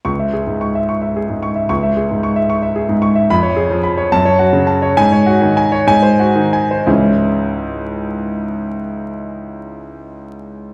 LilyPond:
<<
  \new Staff \with { instrumentName = "Grand piano" } { \time 6/8 \key cis \minor \tempo 4. = 69 << { cis'''8 r2 r8 | cis'''8 r2 r8 | b''8 r4 a''8 r4 | gis''8 r4 gis''8 r4 |
<cis, gis, e gis cis' e'>2.~ | <cis, gis, e gis cis' e'>2. | } \\ { r16 e''16 gis'16 gis,16 cis'''16 e''16 cis'''16 e''16 gis'16 gis,16 cis'''16 e''16 | r16 e''16 gis'16 gis,16 cis'''16 e''16 cis'''16 e''16 gis'16 gis,16 cis'''16 e''16 | r16 cis''16 gis'16 eis16 b''16 cis''16 r16 cis''16 fis'16 cis16 a''16 cis''16 | r16 cis''16 fis'16 dis16 gis''16 cis''16 r16 bis'16 fis'16 dis16 gis''16 bis'16 |
r2. | r2. | } >> }
  \new Staff \with { instrumentName = "Grand piano" } { \clef bass \time 6/8 \key cis \minor cis,2. | cis,2. | eis,4. fis,4. | gis,4. gis,4. |
r2. | r2. | }
>>